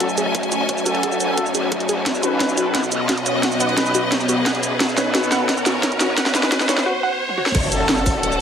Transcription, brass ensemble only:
0.86 1.27 C#4 loud
0.86 1.27 F#4 loud
0.86 1.27 A4 loud
1.29 1.45 C#4 loud
1.29 1.45 F#4 medium
1.29 1.45 A4 loud
2.23 2.64 C#4 loud
2.23 2.64 D#4 medium
2.23 2.64 B4 loud
2.66 2.82 C#4 medium
2.66 2.82 D#4 medium
2.66 2.82 B4 loud
3.60 4.01 C#4 loud
3.60 4.01 D#4 medium
3.60 4.01 B4 loud
4.97 5.38 C#4 loud
4.97 5.38 D#4 loud
4.97 5.38 B4 loud
5.40 5.56 C#4 medium
5.40 5.56 D#4 medium
5.40 5.56 B4 loud
6.35 6.75 C#4 loud
6.35 6.75 D#4 loud
6.35 6.75 B4 loud
7.72 8.13 C#4 loud
7.72 8.13 F#4 medium
7.72 8.13 A4 loud
8.15 8.30 C#4 medium
8.15 8.30 F#4 medium
8.15 8.30 A4 loud

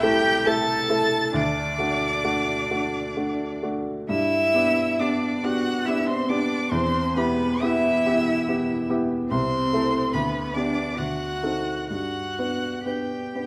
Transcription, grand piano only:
0.00 1.36 C2 loud
0.00 0.03 A3 medium
0.00 0.41 A3 medium
0.00 0.03 E4 medium
0.00 0.41 E4 medium
0.00 0.03 A4 medium
0.00 0.42 A4 medium
0.46 0.85 A3 medium
0.46 0.85 E4 medium
0.46 0.86 A4 medium
0.89 1.30 A3 medium
0.89 1.30 E4 medium
0.89 1.30 A4 medium
1.34 1.77 D2 medium
1.78 2.20 A3 medium
1.78 2.20 D4 medium
1.78 2.20 F#4 medium
2.24 2.65 A3 medium
2.24 2.66 D4 soft
2.24 2.66 F#4 medium
2.71 3.12 A3 soft
2.71 3.12 D4 soft
2.71 3.12 F#4 medium
3.17 3.58 A3 soft
3.17 3.58 D4 soft
3.17 3.58 F#4 soft
3.63 4.04 A3 soft
3.63 4.05 D4 soft
3.63 4.05 F#4 soft
4.09 4.53 G2 medium
4.54 4.95 B3 soft
4.54 4.95 D4 soft
4.54 4.96 G4 medium
5.00 5.39 B3 soft
5.00 5.40 D4 soft
5.00 5.40 G4 soft
5.43 5.82 B3 soft
5.43 5.83 D4 soft
5.43 5.83 G4 medium
5.87 6.25 B3 soft
5.87 6.25 D4 soft
5.87 6.25 G4 medium
6.29 6.67 B3 soft
6.29 6.67 D4 medium
6.29 6.67 G4 medium
6.71 7.14 E2 medium
7.16 7.58 B3 medium
7.16 7.58 E4 medium
7.16 7.58 G4 medium
7.62 8.02 B3 medium
7.62 8.02 E4 medium
7.62 8.02 G4 medium
8.06 8.44 B3 medium
8.06 8.44 E4 medium
8.06 8.44 G4 medium
8.48 8.85 B3 medium
8.48 8.85 E4 soft
8.48 8.85 G4 medium
8.89 9.26 B3 medium
8.89 9.26 E4 medium
8.89 9.26 G4 medium
9.31 9.71 C2 medium
9.73 10.09 A3 medium
9.73 10.10 E4 medium
9.73 10.10 A4 medium
10.14 10.54 D2 medium
10.55 10.94 B3 soft
10.55 10.94 D4 soft
10.55 10.95 G4 medium
10.99 11.42 D2 medium
11.43 11.86 C4 soft
11.43 11.87 D#4 soft
11.43 11.87 A4 soft
11.90 12.37 G2 soft
12.38 12.83 B3 soft
12.38 12.83 D4 soft
12.38 12.83 B4 soft
12.85 13.30 B3 soft
12.85 13.30 D4 soft
12.85 13.31 B4 soft
13.35 13.46 B3 soft
13.35 13.46 D4 soft
13.35 13.46 B4 soft

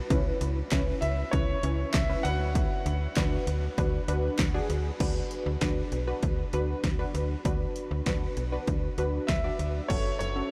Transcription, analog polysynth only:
0.11 0.60 C#4 medium
0.11 0.60 E4 medium
0.11 0.59 B4 loud
0.72 1.21 C#4 medium
0.72 1.21 E4 medium
0.72 1.21 B4 loud
1.33 1.57 C#4 medium
1.33 1.57 E4 medium
1.33 1.57 B4 medium
1.64 2.00 C#4 medium
1.64 2.00 E4 medium
1.64 2.00 C#5 medium
2.10 2.24 C#4 medium
2.10 2.24 E4 medium
2.10 2.24 B4 medium
2.25 2.98 D4 medium
2.25 2.98 F#4 medium
2.25 2.98 B4 medium
3.17 3.66 D4 medium
3.17 3.66 F#4 medium
3.17 3.66 B4 loud
3.78 4.02 D4 medium
3.78 4.02 F#4 medium
3.78 4.02 B4 loud
4.08 4.45 D4 loud
4.08 4.45 F#4 medium
4.08 4.45 B4 loud
4.54 4.91 D4 medium
4.54 4.91 F#4 medium
4.54 4.91 G#4 loud
5.00 5.49 D4 medium
5.00 5.49 F#4 medium
5.00 5.49 B4 loud
5.61 5.98 D4 medium
5.61 5.98 F#4 medium
5.61 5.98 B4 loud
6.07 6.44 D4 medium
6.07 6.44 F#4 medium
6.07 6.44 B4 loud
6.53 6.90 D4 medium
6.53 6.90 F#4 medium
6.53 6.90 B4 loud
6.99 7.36 D4 medium
6.99 7.36 F#4 medium
6.99 7.36 B4 loud
7.45 7.94 D4 medium
7.45 7.94 F#4 medium
7.45 7.94 B4 loud
8.06 8.43 D4 medium
8.06 8.43 F#4 medium
8.06 8.43 B4 loud
8.52 8.89 D4 medium
8.52 8.89 F#4 medium
8.52 8.89 B4 loud
8.98 9.35 D4 medium
8.98 9.35 F#4 medium
8.98 9.35 B4 loud
9.44 9.81 D4 medium
9.44 9.81 F#4 medium
9.44 9.81 D5 loud
9.90 10.27 C#4 medium
9.90 10.27 F#4 medium
9.90 10.27 A4 medium
10.36 10.51 C#4 medium
10.36 10.51 F#4 medium
10.36 10.51 A4 medium

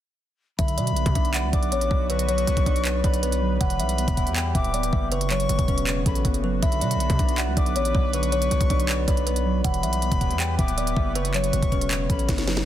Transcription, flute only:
0.59 1.49 B5 loud
1.53 2.06 D6 medium
2.10 3.00 C#6 loud
3.04 3.57 B5 medium
3.61 4.51 B5 loud
4.55 5.08 D6 loud
5.12 6.02 C#6 loud
6.06 6.24 B5 medium
6.62 7.53 B5 loud
7.57 8.10 D6 medium
8.14 9.04 C#6 loud
9.08 9.61 B5 medium
9.64 10.55 B5 loud
10.59 11.12 D6 medium
11.15 12.06 C#6 loud
12.10 12.28 B5 medium

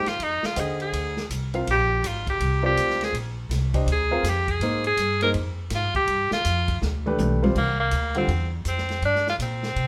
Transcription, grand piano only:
0.56 1.12 D3 medium
0.56 1.12 C5 medium
0.56 1.12 D#5 medium
0.56 1.12 G5 medium
1.54 1.66 C4 medium
1.54 1.66 F4 medium
1.54 1.66 A#4 medium
1.54 1.66 F5 medium
2.63 3.11 C4 medium
2.63 3.11 F4 medium
2.63 3.11 A#4 medium
2.63 3.11 D5 medium
3.74 3.86 D4 medium
3.74 3.86 G4 medium
3.74 3.87 C5 medium
3.74 3.87 D#5 medium
4.11 4.23 C4 medium
4.11 4.23 F4 medium
4.11 4.23 A#4 medium
4.11 4.24 F5 medium
4.63 4.83 A#3 medium
4.63 4.83 D#4 medium
4.63 4.83 G#4 medium
4.63 4.83 C5 medium
5.22 5.33 A#3 medium
5.22 5.34 D#4 medium
5.22 5.34 G#4 medium
5.22 5.34 C5 medium
7.06 7.40 A3 medium
7.06 7.40 D4 medium
7.06 7.40 G4 medium
7.06 7.40 B4 medium
7.43 7.54 G3 medium
7.43 7.54 C4 medium
7.43 7.54 F4 medium
7.43 7.54 C5 medium
8.15 8.27 D3 medium
8.15 8.28 G3 medium
8.15 8.28 C4 medium
8.15 8.28 F4 medium

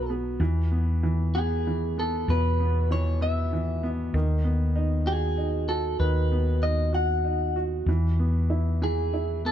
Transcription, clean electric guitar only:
0.00 0.12 B4 medium
1.35 1.99 G#4 medium
2.00 2.30 A4 medium
2.30 2.92 B4 medium
2.92 3.22 C#5 medium
3.22 3.88 E5 medium
5.07 5.68 G#4 medium
5.69 5.99 A4 medium
6.00 6.64 B4 medium
6.63 6.94 D#5 medium
6.95 7.60 F#5 medium
8.84 9.41 G#4 medium
9.46 9.52 A4 medium

